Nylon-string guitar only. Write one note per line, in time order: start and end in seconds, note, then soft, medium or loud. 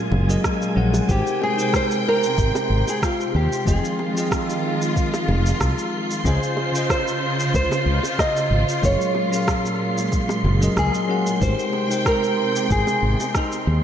1.11 1.43 G4 medium
1.43 1.75 G#4 medium
1.76 1.84 C5 medium
2.08 2.92 A#4 loud
2.89 3.04 G#4 medium
3.04 3.36 F4 medium
3.36 3.68 G4 medium
3.68 4.93 G#4 medium
6.27 6.87 G#4 medium
6.91 7.51 C5 medium
7.56 8.15 C5 loud
8.20 8.84 D#5 loud
8.85 9.44 C#5 medium
10.79 11.42 G#4 medium
11.43 12.02 C5 loud
12.08 12.71 A#4 medium
12.72 13.38 G#4 loud
13.37 13.84 D#4 medium